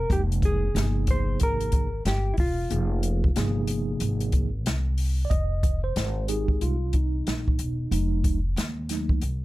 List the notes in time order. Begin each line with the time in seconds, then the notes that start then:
Already playing: A#4
0.10 F1 C3 F3 G#3 A#3 D#4 G4, kick, closed hi-hat
0.32 closed hi-hat
0.42 G#4, kick, closed hi-hat
0.74 G1 C3 F3 A#3 D#4 G4, snare, closed hi-hat
0.82 G#4
1.07 C5, kick, closed hi-hat
1.40 G#1 A#4, kick, closed hi-hat
1.61 closed hi-hat
1.72 kick, closed hi-hat
2.05 G1 G4, snare, closed hi-hat
2.34 E4, open hi-hat
2.38 E1 F4, kick
2.70 F1 C3 F3 A#3 D#4 G#4, closed hi-hat
3.03 closed hi-hat
3.24 kick
3.36 G1 C3 F3 A#3 D#4 G#4, snare, closed hi-hat
3.67 closed hi-hat
4.00 G#1, closed hi-hat
4.20 closed hi-hat
4.32 kick, closed hi-hat
4.66 C2, snare, closed hi-hat
4.98 open hi-hat
5.25 D5
5.30 F1 D#5, kick, closed hi-hat
5.63 kick, closed hi-hat
5.84 C5
5.96 G#1, snare, closed hi-hat
6.28 G#3 D#4 G4 G#4, closed hi-hat
6.48 kick
6.61 C2 F4, closed hi-hat
6.93 D#4, kick, closed hi-hat
7.27 A#1, snare, closed hi-hat
7.48 kick
7.59 E1, closed hi-hat
7.91 F1 F#3 A3 D#4, closed hi-hat
8.24 kick, closed hi-hat
8.56 D#2, snare, closed hi-hat
8.89 F#3 A3 D#4, snare, closed hi-hat
9.09 kick
9.21 C2, closed hi-hat